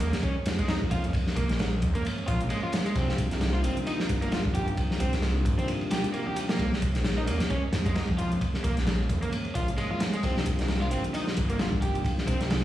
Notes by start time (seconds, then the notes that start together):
Already playing: G#3 A#3 C#4
0.00 F2 A#3, closed hi-hat, ride
0.13 snare, closed hi-hat, high conga
0.23 C#4, kick, closed hi-hat, ride
0.45 F2, snare, closed hi-hat, ride, high conga
0.59 G#3, kick, closed hi-hat
0.68 D#4, snare, closed hi-hat, ride
0.82 kick, high conga
0.91 F4, kick, closed hi-hat, ride, low conga
1.04 closed hi-hat, ride
1.13 kick, closed hi-hat, ride
1.27 snare, high conga
1.36 A#3, kick, closed hi-hat, ride, low conga
1.49 A#1, snare, closed hi-hat
1.59 snare, closed hi-hat, ride, high conga
1.82 F2, kick, closed hi-hat, ride
1.95 A#3, closed hi-hat, high conga
2.05 closed hi-hat, ride
2.18 ride
2.27 A#1 F4, kick, closed hi-hat, ride, high conga
2.41 A#1, closed hi-hat, low conga
2.50 G#3, closed hi-hat, ride
2.63 F4, high conga
2.72 snare, closed hi-hat, ride
2.86 G#3, closed hi-hat
2.95 C2 C3 G3 C4 D4 D#4 F4, kick, closed hi-hat, ride
3.08 snare, high conga
3.18 kick, closed hi-hat, ride, low conga
3.31 C2, snare, closed hi-hat
3.41 snare, closed hi-hat, ride, high conga
3.54 F4, ride
3.64 G1 C4, closed hi-hat, ride
3.77 closed hi-hat, high conga
3.87 D#4, closed hi-hat, ride
4.00 snare
4.09 G1, kick, closed hi-hat, ride, high conga
4.22 A#3, closed hi-hat
4.32 F4, snare, closed hi-hat, ride
4.45 kick, high conga
4.54 G4, kick, closed hi-hat, ride, low conga
4.67 closed hi-hat, ride
4.77 kick, closed hi-hat, ride
4.90 snare, high conga
5.00 C4, kick, closed hi-hat, ride, low conga
5.13 C2, snare, closed hi-hat
5.22 snare, closed hi-hat, ride, high conga
5.45 G1, kick, closed hi-hat, ride
5.58 C4, closed hi-hat, high conga
5.68 closed hi-hat, ride
5.81 ride
5.91 G4, snare, closed hi-hat, ride, high conga, low conga
6.04 closed hi-hat, ride, low conga
6.14 A#3, closed hi-hat, ride
6.27 G4, high conga
6.36 closed hi-hat, ride
6.49 A#3, snare, closed hi-hat, ride
6.59 A#1 G#3 A#3 C#4, kick, closed hi-hat, ride
6.72 snare, high conga
6.82 kick, closed hi-hat, ride, low conga
6.95 A#1, snare, closed hi-hat
7.04 snare, closed hi-hat, ride, high conga
7.18 D#4, ride
7.27 F2 A#3, closed hi-hat, ride
7.40 snare, closed hi-hat, high conga
7.50 C#4, kick, closed hi-hat, ride
7.73 F2, snare, closed hi-hat, ride, high conga
7.86 G#3, kick, closed hi-hat
7.95 D#4, snare, closed hi-hat, ride
8.09 kick, high conga
8.18 F4, kick, closed hi-hat, ride, low conga
8.32 closed hi-hat, ride
8.41 kick, closed hi-hat, ride
8.54 snare, high conga
8.64 A#3, kick, closed hi-hat, ride, low conga
8.77 A#1, snare, closed hi-hat
8.87 snare, closed hi-hat, ride, high conga
9.09 F2, kick, closed hi-hat, ride
9.22 A#3, closed hi-hat, high conga
9.32 closed hi-hat, ride
9.45 ride
9.55 A#1 F4, kick, closed hi-hat, ride, high conga
9.68 A#1, closed hi-hat, low conga
9.78 G#3, closed hi-hat, ride
9.91 F4, high conga
10.00 snare, closed hi-hat, ride
10.14 G#3, closed hi-hat
10.23 C2 C3 G3 A#3 C4 D4 D#4 F4, kick, closed hi-hat, ride
10.36 snare, high conga
10.46 kick, closed hi-hat, ride, low conga
10.59 C2, snare, closed hi-hat
10.68 snare, closed hi-hat, ride, high conga
10.82 F4, ride
10.91 G1 C4, closed hi-hat, ride
11.04 closed hi-hat, high conga
11.14 D#4, closed hi-hat, ride
11.27 snare
11.37 G1, kick, closed hi-hat, ride, high conga
11.50 A#3, closed hi-hat
11.59 F4, snare, closed hi-hat, ride
11.72 kick, high conga
11.82 G4, kick, closed hi-hat, ride, low conga
11.95 closed hi-hat, ride
12.05 kick, closed hi-hat, ride
12.18 snare, high conga
12.27 C4, kick, closed hi-hat, ride, low conga
12.41 C2, snare, closed hi-hat
12.50 snare, closed hi-hat, ride, high conga